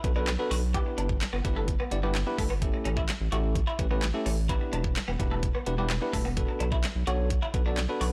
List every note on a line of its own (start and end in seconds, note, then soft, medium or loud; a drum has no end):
0.04 0.37 B1 medium
0.04 0.11 B3 medium
0.04 0.11 D4 medium
0.04 0.11 F#4 medium
0.04 0.11 A4 medium
0.04 0.11 B4 loud
0.04 muted clean electric guitar stroke soft
0.04 kick loud
0.04 closed hi-hat medium
0.16 0.30 B3 medium
0.16 0.30 D4 medium
0.16 0.24 D4 medium
0.16 0.30 F#4 medium
0.16 0.30 A4 medium
0.16 0.30 B4 loud
0.27 snare medium
0.27 clap loud
0.27 closed hi-hat medium
0.39 0.60 B3 medium
0.39 0.60 D4 medium
0.39 0.60 F#4 medium
0.39 0.60 A4 medium
0.39 0.60 B4 loud
0.51 0.83 B1 medium
0.51 0.59 F#4 medium
0.51 open hi-hat medium
0.74 1.16 B3 medium
0.74 1.16 D4 medium
0.74 1.16 E4 medium
0.74 0.82 G4 loud
0.74 1.16 G4 medium
0.74 1.16 B4 loud
0.74 kick loud
0.74 closed hi-hat loud
0.86 muted clean electric guitar stroke soft
0.98 1.22 G1 loud
0.98 1.06 D4 medium
0.98 closed hi-hat medium
1.09 kick medium
1.21 snare medium
1.21 clap loud
1.21 closed hi-hat medium
1.33 1.41 G1 medium
1.33 1.41 B3 medium
1.44 1.77 G1 loud
1.44 1.72 B3 medium
1.44 1.72 D4 medium
1.44 1.72 E4 medium
1.44 1.72 G4 medium
1.44 1.73 B4 loud
1.44 muted clean electric guitar stroke soft
1.44 kick medium
1.44 closed hi-hat medium
1.56 1.64 A3 medium
1.68 kick medium
1.68 closed hi-hat medium
1.80 1.88 B3 medium
1.91 2.24 G1 medium
1.91 1.98 B3 medium
1.91 1.98 D4 medium
1.91 1.99 E4 medium
1.91 1.99 G4 medium
1.91 1.99 D5 loud
1.91 muted clean electric guitar stroke soft
1.91 closed hi-hat medium
2.03 2.11 G3 medium
2.03 2.17 B3 medium
2.03 2.17 D4 medium
2.03 2.17 E4 medium
2.03 2.17 G4 medium
2.03 2.17 B4 loud
2.15 muted clean electric guitar stroke soft
2.15 snare medium
2.15 clap loud
2.15 closed hi-hat medium
2.27 2.47 B3 medium
2.27 2.47 D4 medium
2.27 2.48 E4 medium
2.27 2.48 G4 medium
2.27 2.48 B4 loud
2.38 2.71 G1 medium
2.38 2.46 A3 medium
2.38 kick medium
2.38 open hi-hat medium
2.50 2.58 B3 medium
2.62 3.03 A3 medium
2.62 3.03 C#4 medium
2.62 3.03 E4 medium
2.62 3.03 G4 medium
2.62 3.04 A4 loud
2.62 kick loud
2.62 closed hi-hat loud
2.74 muted clean electric guitar stroke soft
2.85 3.10 A1 medium
2.85 2.93 C#4 medium
2.85 closed hi-hat medium
2.97 3.05 E4 medium
2.97 kick medium
3.08 snare medium
3.08 clap loud
3.08 closed hi-hat medium
3.21 3.29 A1 medium
3.32 3.65 A1 loud
3.32 3.60 A3 medium
3.32 3.60 C#4 medium
3.32 3.60 E4 medium
3.32 3.40 F#4 medium
3.32 3.60 G4 medium
3.32 3.60 A4 medium
3.32 closed hi-hat medium
3.55 kick medium
3.55 closed hi-hat medium
3.67 3.75 E4 medium
3.79 4.12 A1 medium
3.79 3.86 A3 medium
3.79 3.86 C#4 medium
3.79 3.86 E4 medium
3.79 3.86 G4 medium
3.79 3.86 B4 medium
3.79 muted clean electric guitar stroke soft
3.79 kick medium
3.79 closed hi-hat medium
3.91 4.05 A3 medium
3.91 3.98 B3 medium
3.91 4.05 C#4 medium
3.91 4.05 E4 medium
3.91 4.05 G4 medium
3.91 4.05 B4 medium
4.02 snare medium
4.02 clap loud
4.02 closed hi-hat medium
4.14 4.35 A3 medium
4.14 4.35 C#4 medium
4.14 4.35 E4 medium
4.14 4.35 G4 medium
4.14 4.35 A4 medium
4.26 4.59 A1 loud
4.26 4.34 C#4 medium
4.26 open hi-hat medium
4.49 4.91 B3 medium
4.49 4.91 D4 medium
4.49 4.57 E4 medium
4.49 4.91 E4 medium
4.49 4.91 G4 medium
4.49 4.91 B4 loud
4.49 kick loud
4.49 closed hi-hat loud
4.61 muted clean electric guitar stroke soft
4.73 4.97 E1 loud
4.73 4.81 D4 medium
4.73 closed hi-hat medium
4.84 kick medium
4.96 snare medium
4.96 clap loud
4.96 closed hi-hat medium
5.08 5.16 E1 medium
5.08 5.16 B3 medium
5.19 5.52 E1 loud
5.19 5.47 B3 medium
5.19 5.47 D4 medium
5.19 5.47 E4 medium
5.19 5.47 G4 medium
5.19 5.47 B4 loud
5.19 muted clean electric guitar stroke soft
5.19 kick loud
5.19 closed hi-hat medium
5.31 5.39 A3 medium
5.43 kick medium
5.43 closed hi-hat medium
5.55 5.63 B3 medium
5.66 5.99 E1 medium
5.66 5.73 B3 medium
5.66 5.73 D4 medium
5.66 5.74 E4 medium
5.66 5.74 G4 medium
5.66 5.74 B4 loud
5.66 muted clean electric guitar stroke soft
5.66 closed hi-hat medium
5.78 5.86 G3 medium
5.78 5.92 B3 medium
5.78 5.92 D4 medium
5.78 5.92 E4 medium
5.78 5.92 G4 medium
5.78 5.92 B4 loud
5.90 muted clean electric guitar stroke soft
5.90 snare medium
5.90 clap loud
5.90 closed hi-hat loud
6.02 6.22 B3 medium
6.02 6.22 D4 medium
6.02 6.23 E4 medium
6.02 6.23 G4 medium
6.02 6.23 B4 loud
6.13 6.46 E1 medium
6.13 6.21 A3 medium
6.13 kick medium
6.13 open hi-hat medium
6.25 6.33 B3 medium
6.37 6.78 B3 medium
6.37 6.78 D4 medium
6.37 6.78 F#4 medium
6.37 6.78 A4 medium
6.37 6.79 B4 medium
6.37 kick loud
6.37 closed hi-hat loud
6.49 muted clean electric guitar stroke soft
6.60 6.85 B1 loud
6.60 6.68 D4 medium
6.60 closed hi-hat medium
6.72 6.80 E4 medium
6.72 kick medium
6.83 snare medium
6.83 clap loud
6.83 closed hi-hat loud
6.96 7.04 B1 medium
7.07 7.40 B1 loud
7.07 7.35 B3 medium
7.07 7.35 D4 medium
7.07 7.15 F#4 medium
7.07 7.35 F#4 medium
7.07 7.35 A4 medium
7.07 7.35 C#5 loud
7.07 closed hi-hat medium
7.30 kick loud
7.30 closed hi-hat medium
7.42 7.50 E4 medium
7.54 7.87 B1 medium
7.54 7.61 B3 medium
7.54 7.61 D4 medium
7.54 7.61 F#4 medium
7.54 7.61 A4 medium
7.54 7.61 B4 loud
7.54 muted clean electric guitar stroke soft
7.54 kick loud
7.54 closed hi-hat medium
7.66 7.80 B3 medium
7.66 7.80 D4 medium
7.66 7.74 D4 medium
7.66 7.80 F#4 medium
7.66 7.80 A4 medium
7.66 7.80 D5 loud
7.77 snare medium
7.77 clap loud
7.77 closed hi-hat loud
7.89 8.10 B3 medium
7.89 8.10 D4 medium
7.89 8.10 F#4 medium
7.89 8.10 A4 medium
7.89 8.10 B4 loud
8.01 8.12 B1 loud
8.01 8.09 F#4 medium
8.01 open hi-hat medium